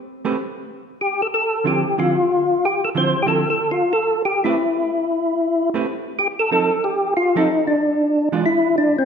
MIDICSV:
0, 0, Header, 1, 3, 480
1, 0, Start_track
1, 0, Key_signature, 0, "minor"
1, 0, Tempo, 323799
1, 56, Time_signature, 4, 2, 24, 8
1, 13416, End_track
2, 0, Start_track
2, 0, Title_t, "Tonewheel organ"
2, 0, Program_c, 0, 16
2, 1498, Note_on_c, 0, 67, 71
2, 1799, Note_off_c, 0, 67, 0
2, 1811, Note_on_c, 0, 69, 79
2, 1888, Note_off_c, 0, 69, 0
2, 1988, Note_on_c, 0, 69, 79
2, 2471, Note_off_c, 0, 69, 0
2, 2480, Note_on_c, 0, 67, 80
2, 2957, Note_off_c, 0, 67, 0
2, 2958, Note_on_c, 0, 65, 85
2, 3929, Note_off_c, 0, 65, 0
2, 3933, Note_on_c, 0, 67, 84
2, 4214, Note_off_c, 0, 67, 0
2, 4218, Note_on_c, 0, 69, 80
2, 4292, Note_off_c, 0, 69, 0
2, 4410, Note_on_c, 0, 72, 93
2, 4778, Note_off_c, 0, 72, 0
2, 4780, Note_on_c, 0, 67, 66
2, 4842, Note_off_c, 0, 67, 0
2, 4862, Note_on_c, 0, 69, 94
2, 5173, Note_off_c, 0, 69, 0
2, 5191, Note_on_c, 0, 69, 80
2, 5505, Note_on_c, 0, 65, 73
2, 5506, Note_off_c, 0, 69, 0
2, 5823, Note_off_c, 0, 65, 0
2, 5825, Note_on_c, 0, 69, 88
2, 6261, Note_off_c, 0, 69, 0
2, 6304, Note_on_c, 0, 67, 84
2, 6570, Note_off_c, 0, 67, 0
2, 6583, Note_on_c, 0, 64, 74
2, 8443, Note_off_c, 0, 64, 0
2, 9171, Note_on_c, 0, 67, 89
2, 9304, Note_off_c, 0, 67, 0
2, 9478, Note_on_c, 0, 69, 89
2, 9642, Note_off_c, 0, 69, 0
2, 9671, Note_on_c, 0, 69, 96
2, 10142, Note_on_c, 0, 67, 89
2, 10154, Note_off_c, 0, 69, 0
2, 10582, Note_off_c, 0, 67, 0
2, 10626, Note_on_c, 0, 65, 88
2, 10923, Note_off_c, 0, 65, 0
2, 10925, Note_on_c, 0, 63, 91
2, 11364, Note_off_c, 0, 63, 0
2, 11376, Note_on_c, 0, 62, 82
2, 12285, Note_off_c, 0, 62, 0
2, 12537, Note_on_c, 0, 64, 89
2, 12983, Note_off_c, 0, 64, 0
2, 13012, Note_on_c, 0, 62, 81
2, 13290, Note_off_c, 0, 62, 0
2, 13320, Note_on_c, 0, 60, 82
2, 13416, Note_off_c, 0, 60, 0
2, 13416, End_track
3, 0, Start_track
3, 0, Title_t, "Hollow-body jazz guitar"
3, 0, Program_c, 1, 26
3, 366, Note_on_c, 1, 57, 60
3, 373, Note_on_c, 1, 67, 63
3, 374, Note_on_c, 1, 60, 69
3, 383, Note_on_c, 1, 71, 68
3, 523, Note_off_c, 1, 57, 0
3, 527, Note_off_c, 1, 60, 0
3, 527, Note_off_c, 1, 67, 0
3, 532, Note_off_c, 1, 71, 0
3, 2434, Note_on_c, 1, 50, 46
3, 2445, Note_on_c, 1, 53, 51
3, 2453, Note_on_c, 1, 60, 54
3, 2456, Note_on_c, 1, 64, 51
3, 2707, Note_off_c, 1, 50, 0
3, 2713, Note_off_c, 1, 53, 0
3, 2717, Note_off_c, 1, 60, 0
3, 2718, Note_off_c, 1, 64, 0
3, 2934, Note_on_c, 1, 50, 49
3, 2941, Note_on_c, 1, 53, 50
3, 2943, Note_on_c, 1, 60, 51
3, 2943, Note_on_c, 1, 64, 56
3, 3197, Note_off_c, 1, 50, 0
3, 3200, Note_off_c, 1, 53, 0
3, 3201, Note_off_c, 1, 60, 0
3, 3202, Note_off_c, 1, 64, 0
3, 4370, Note_on_c, 1, 50, 52
3, 4374, Note_on_c, 1, 53, 53
3, 4381, Note_on_c, 1, 60, 55
3, 4385, Note_on_c, 1, 64, 55
3, 4634, Note_off_c, 1, 50, 0
3, 4635, Note_off_c, 1, 53, 0
3, 4639, Note_off_c, 1, 60, 0
3, 4641, Note_off_c, 1, 64, 0
3, 4831, Note_on_c, 1, 50, 43
3, 4839, Note_on_c, 1, 53, 50
3, 4842, Note_on_c, 1, 64, 51
3, 4843, Note_on_c, 1, 60, 48
3, 5104, Note_off_c, 1, 50, 0
3, 5108, Note_off_c, 1, 53, 0
3, 5110, Note_off_c, 1, 60, 0
3, 5110, Note_off_c, 1, 64, 0
3, 6591, Note_on_c, 1, 57, 58
3, 6597, Note_on_c, 1, 60, 60
3, 6606, Note_on_c, 1, 67, 62
3, 6610, Note_on_c, 1, 71, 71
3, 6750, Note_off_c, 1, 57, 0
3, 6753, Note_off_c, 1, 60, 0
3, 6758, Note_off_c, 1, 67, 0
3, 6760, Note_off_c, 1, 71, 0
3, 8510, Note_on_c, 1, 57, 57
3, 8515, Note_on_c, 1, 60, 58
3, 8526, Note_on_c, 1, 67, 60
3, 8530, Note_on_c, 1, 71, 66
3, 8671, Note_off_c, 1, 57, 0
3, 8673, Note_off_c, 1, 60, 0
3, 8679, Note_off_c, 1, 67, 0
3, 8681, Note_off_c, 1, 71, 0
3, 9654, Note_on_c, 1, 53, 49
3, 9661, Note_on_c, 1, 60, 49
3, 9668, Note_on_c, 1, 63, 54
3, 9675, Note_on_c, 1, 69, 53
3, 9918, Note_off_c, 1, 53, 0
3, 9921, Note_off_c, 1, 60, 0
3, 9924, Note_off_c, 1, 63, 0
3, 9928, Note_off_c, 1, 69, 0
3, 10904, Note_on_c, 1, 53, 57
3, 10915, Note_on_c, 1, 60, 64
3, 10919, Note_on_c, 1, 63, 63
3, 10922, Note_on_c, 1, 69, 66
3, 11070, Note_off_c, 1, 53, 0
3, 11075, Note_off_c, 1, 60, 0
3, 11078, Note_off_c, 1, 63, 0
3, 11079, Note_off_c, 1, 69, 0
3, 12338, Note_on_c, 1, 52, 61
3, 12342, Note_on_c, 1, 56, 60
3, 12346, Note_on_c, 1, 62, 71
3, 12353, Note_on_c, 1, 65, 68
3, 12509, Note_off_c, 1, 52, 0
3, 12511, Note_off_c, 1, 56, 0
3, 12513, Note_off_c, 1, 62, 0
3, 12517, Note_off_c, 1, 65, 0
3, 13416, End_track
0, 0, End_of_file